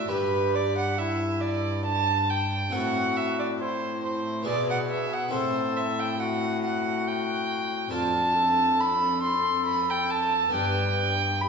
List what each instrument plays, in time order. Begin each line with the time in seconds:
Already playing: violin E5
0.06 harpsichord D4 G4 B4, flute G4
0.11 cello G2, harpsichord G2, violin B4
0.55 violin D5
0.78 violin F#5
0.98 flute E4, violin E5
1.41 violin D5
1.85 flute D4, violin A5
2.30 violin G5
2.70 harpsichord C4 E4 A4, flute F#4, violin F#5
2.74 harpsichord A2, cello A2
3.17 violin E5
3.39 violin D5
3.60 flute E4, violin C5
4.03 violin C5
4.42 harpsichord B3 E4 G#4
4.46 harpsichord B2, cello B2, flute G#4, violin D5
4.70 violin F#5
4.90 violin E5
5.13 violin F#5
5.29 harpsichord C4 E4 A4
5.33 harpsichord A2, cello A2, flute A4, violin C5
5.76 violin E5
5.99 violin G5
6.20 flute F#4, violin F#5
6.64 violin F#5
7.07 violin G5
7.88 harpsichord C4 D4 A4, flute F4, violin A5
7.93 harpsichord F2, cello F2
8.35 flute A4
8.80 violin B5
9.23 violin C6
9.66 violin B5
9.90 violin G5
10.10 violin A5
10.49 harpsichord B3 D4 D5
10.53 harpsichord G2, cello G2, flute B4, violin G5
11.41 flute G4, violin B5